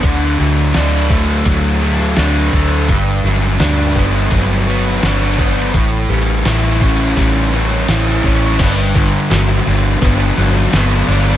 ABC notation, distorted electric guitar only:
X:1
M:4/4
L:1/8
Q:1/4=84
K:Glyd
V:1 name="Distorted electric guitar"
D, F, D A, F, A, D A, | G,, F, D B, F, B, D B, | A,, G, E C G, C E C | G,, D, F, D, B, F, B, D |]